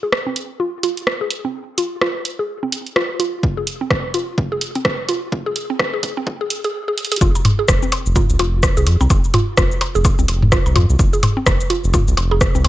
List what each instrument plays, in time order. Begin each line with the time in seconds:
0.03 synth arpeggio sound G#4
0.12 cross-stick
0.27 synth arpeggio sound C4
0.36 closed hi-hat
0.60 synth arpeggio sound F4
0.83 synth arpeggio sound F4, closed hi-hat
0.97 closed hi-hat
1.07 cross-stick
1.21 synth arpeggio sound G#4
1.30 closed hi-hat
1.45 synth arpeggio sound C4
1.78 synth arpeggio sound F4, closed hi-hat
2.01 synth arpeggio sound F4, cross-stick
2.25 closed hi-hat
2.39 synth arpeggio sound G#4
2.63 synth arpeggio sound C4
2.72 closed hi-hat
2.87 closed hi-hat
2.96 synth arpeggio sound F4, cross-stick
3.20 synth arpeggio sound F4, closed hi-hat
3.43 kick
3.57 synth arpeggio sound G#4
3.67 closed hi-hat
3.81 synth arpeggio sound C4
3.91 kick, cross-stick
4.14 synth arpeggio sound F4, closed hi-hat
4.38 kick
4.52 synth arpeggio sound G#4
4.61 closed hi-hat
4.75 synth arpeggio sound C4, closed hi-hat
4.85 kick, cross-stick
5.09 synth arpeggio sound F4, closed hi-hat
5.32 kick
5.46 synth arpeggio sound G#4
5.56 closed hi-hat
5.70 synth arpeggio sound C4
5.79 kick, cross-stick
5.94 synth arpeggio sound G#4
6.03 kick, closed hi-hat
6.17 synth arpeggio sound C4
6.27 kick
6.41 synth arpeggio sound G#4
6.50 closed hi-hat
6.64 synth arpeggio sound G#4, closed hi-hat
6.88 synth arpeggio sound G#4
6.98 closed hi-hat
7.05 closed hi-hat
7.12 synth arpeggio sound G#4, closed hi-hat
7.16 closed hi-hat
7.21 analog synth bass F1, synth arpeggio sound F4, kick, cabasa, percussion blips
7.35 percussion blips, cabasa
7.45 closed hi-hat, mid tom, percussion blips
7.59 synth arpeggio sound G#4
7.68 analog synth bass F1, kick, cross-stick, cabasa, percussion blips
7.83 synth arpeggio sound C4, cabasa
7.92 closed hi-hat, percussion blips
8.06 analog synth bass F1, cabasa
8.16 synth arpeggio sound F4, kick, mid tom, percussion blips, cabasa
8.30 analog synth bass C2, cabasa
8.39 analog synth bass F1, synth arpeggio sound F4, closed hi-hat, percussion blips
8.63 kick, cross-stick, cabasa, percussion blips
8.77 analog synth bass C2, synth arpeggio sound G#4, cabasa
8.87 analog synth bass F2, closed hi-hat, percussion blips
9.01 analog synth bass C2, synth arpeggio sound C4, percussion blips, cabasa
9.10 analog synth bass F1, kick, cabasa, percussion blips
9.24 cabasa
9.34 synth arpeggio sound F4, closed hi-hat, mid tom, percussion blips
9.57 analog synth bass F1, synth arpeggio sound F4, kick, cross-stick, cabasa, percussion blips
9.71 cabasa
9.81 closed hi-hat, percussion blips
9.95 analog synth bass F1, synth arpeggio sound G#4, cabasa
10.05 kick, cabasa, percussion blips
10.19 analog synth bass C2, synth arpeggio sound C4, cabasa
10.28 analog synth bass F1, closed hi-hat, percussion blips
10.42 mid tom
10.52 synth arpeggio sound F4, kick, cross-stick, cabasa, percussion blips
10.66 analog synth bass C2, percussion blips, cabasa
10.76 analog synth bass F2, synth arpeggio sound F4, closed hi-hat, mid tom, percussion blips
10.90 analog synth bass C2, cabasa
10.99 analog synth bass F1, kick, cabasa, percussion blips
11.13 synth arpeggio sound G#4, cabasa
11.23 closed hi-hat, mid tom, percussion blips
11.37 synth arpeggio sound C4
11.46 analog synth bass F1, kick, cross-stick, percussion blips, cabasa
11.61 cabasa
11.70 synth arpeggio sound F4, closed hi-hat, percussion blips
11.84 analog synth bass F1, cabasa
11.94 synth arpeggio sound F4, kick, mid tom, cabasa, percussion blips
12.08 analog synth bass C2, cabasa
12.17 analog synth bass F1, closed hi-hat, percussion blips
12.31 synth arpeggio sound G#4, percussion blips
12.41 kick, cross-stick, cabasa, percussion blips
12.55 analog synth bass C2, synth arpeggio sound C4, cabasa
12.64 analog synth bass F2, closed hi-hat, percussion blips